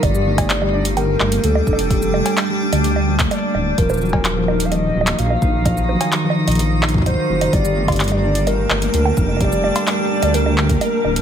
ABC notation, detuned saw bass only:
X:1
M:4/4
L:1/16
Q:1/4=128
K:Gm
V:1 name="Detuned saw bass" clef=bass
G,,,8- G,,,2 G,,,2 D,,2 F,,,2- | F,,,3 z4 D,,4- D,, z2 D,,,2 | E,,,8- E,,,2 E,,,2 B,,,2 B,,,2- | B,,,3 z4 B,,,4- B,,, z2 _G,,,2 |
G,,,8- G,,,2 G,,,2 D,,2 F,,,2- | F,,,3 z4 D,,4- D,, z2 D,,,2 |]